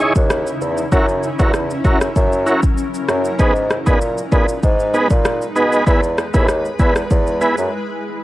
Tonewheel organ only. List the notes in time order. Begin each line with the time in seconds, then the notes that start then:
0.00 D#4 E4 G#4 C#5
0.92 C#4 E4 F#4 A#4
1.39 C#4 E4 F#4 A#4
1.84 C#4 E4 F#4 A#4
2.46 C#4 E4 F#4 A#4
3.39 B3 D#4 G#4 B4
3.86 B3 D#4 G#4 B4
4.32 B3 D#4 G#4 B4
4.94 B3 D#4 G#4 B4
5.55 B3 D#4 G#4 B4
5.86 B3 E4 G#4 B4
6.34 B3 E4 G#4 B4
6.79 B3 E4 G#4 B4
7.41 B3 E4 G#4 B4